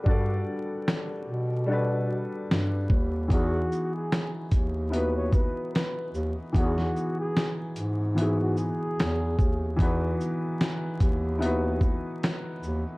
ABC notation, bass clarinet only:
X:1
M:4/4
L:1/16
Q:"Swing 16ths" 1/4=74
K:E
V:1 name="Bass clarinet" clef=bass
=G,,2 z4 B,,4- B,, z G,,2 D,,2 | E,,2 z4 D,,4- D,, z3 D,, z | E,,2 z4 G,,4- G,, z E,,2 D,,2 | E,,2 z4 D,,4- D,, z3 D,, z |]